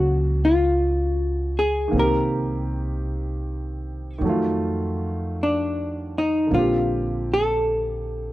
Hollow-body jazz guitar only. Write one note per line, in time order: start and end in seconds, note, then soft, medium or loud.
0.00 0.44 F#4 medium
0.45 1.60 F4 medium
1.59 1.96 G#4 medium
1.99 4.21 A#4 medium
5.43 6.18 D4 medium
6.18 6.54 D#4 medium
6.54 7.31 F4 medium
7.34 8.33 A4 medium